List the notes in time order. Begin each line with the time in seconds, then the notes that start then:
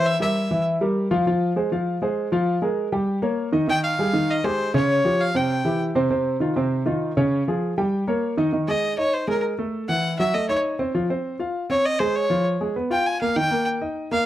Already playing: E3 E4 E5
0.06 E5
0.20 G3 G4 A#4 E5
0.51 E3 E4 E5
0.81 G3 G4 A#4
1.11 F3 F4 F5
1.26 F3 F4 F5
1.56 G#3 G#4 C5
1.72 F3 F4 F5
2.02 G#3 G#4 C5
2.32 F3 F4 F5
2.62 G#3 G#4 A#4
2.92 G3 G4 G5
3.22 A#3 A#4 C#5
3.53 D#3 D#4 D#5
3.68 D#3 D#4 D#5 G5
3.84 F5
3.99 G3 G4 G#4
4.13 D#3 D#4 D#5
4.31 D#5
4.44 G#3 G4 G#4 C5
4.74 C#3 C#4 C#5
5.04 F3 F4 G4
5.21 F5
5.34 C3 C4 C5 G5
5.65 E3 E4 G4
5.95 C3 C4 C5
6.10 C3 C4 C5
6.40 D#3 D#4 F4
6.56 C3 C4 C5
6.86 D#3 D#4 F4
7.17 C#3 C#4 C#5
7.48 F3 F4 G#4
7.78 G3 G4 G5
8.08 A#3 A#4 C#5
8.38 D#3 D#4 D#5
8.53 D#3 D#4
8.68 G#3 G#4 D#5
8.98 D#4 C#5 D#5
9.13 C5
9.28 G#3 G#4 A#4
9.59 A3 A4
9.88 E3 E4 F#5
10.19 F#3 F#4 E5
10.34 A3 A4 D#5
10.48 D#4 C#5 D#5
10.79 C4 C5
10.95 F3 F4
11.10 C4 C5
11.39 F4 F5
11.70 C4 C5 C#5
11.86 D#5
11.99 G#3 G#4 C5
12.16 C#5
12.30 F3 F4
12.61 G#3 G#4
12.76 B3 B4
12.90 F4 F5 G5
13.06 G#5
13.21 A#3 A#4 F5
13.36 D#3 D#4 G5
13.51 A#3 A#4
13.81 D#4 D#5
14.11 A#3 A#4 F5